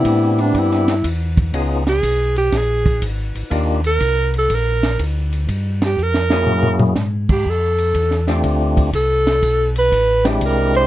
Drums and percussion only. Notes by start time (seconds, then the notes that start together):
0.05 kick, hi-hat pedal, ride
0.39 ride
0.55 kick, ride
0.71 snare
0.88 snare, ride
1.04 kick, hi-hat pedal, ride
1.37 kick, ride
1.54 kick, ride
1.87 snare, ride
2.03 kick, hi-hat pedal, ride
2.36 ride
2.52 kick, snare, ride
2.85 kick, ride
3.02 kick, hi-hat pedal, ride
3.35 ride
3.51 kick, ride
3.84 ride
4.00 kick, hi-hat pedal, ride
4.34 ride
4.50 kick, ride
4.83 snare, ride
4.99 kick, hi-hat pedal, ride
5.33 ride
5.49 kick, ride
5.82 snare, ride
5.98 hi-hat pedal
6.14 snare
6.30 snare
6.47 floor tom
6.63 floor tom
6.79 floor tom
6.95 snare, hi-hat pedal
7.29 kick, crash
7.46 kick
7.78 ride
7.94 kick, hi-hat pedal, ride
8.11 snare
8.28 snare, ride
8.44 kick, ride
8.77 kick, ride
8.93 kick, hi-hat pedal, ride
9.27 snare, ride
9.43 kick, ride
9.76 ride
9.92 kick, hi-hat pedal, ride
10.25 snare, ride
10.41 kick, ride
10.75 ride